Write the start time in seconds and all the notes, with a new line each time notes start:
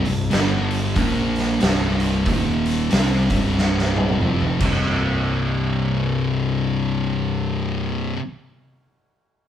0.05 C1 C2 G2, open hi-hat
0.30 G1 G2 D3 G3, snare, open hi-hat
0.71 open hi-hat
0.96 A#1 A#2 F3 A#3, kick, open hi-hat
1.36 snare, open hi-hat
1.60 C1 C2 G2 C3, snare, open hi-hat
2.00 open hi-hat
2.25 D#1 D#2 A#2 D#3, kick, open hi-hat
2.66 open hi-hat
2.90 C2 C3 G3 C4, snare, open hi-hat
3.29 C1 C2 G2 C3, kick, open hi-hat
3.58 snare
3.79 snare
3.96 high tom
4.09 high tom
4.21 F1 F2 C3 F3, mid tom
4.41 mid tom
4.59 C1 C2 G2 C3, kick, crash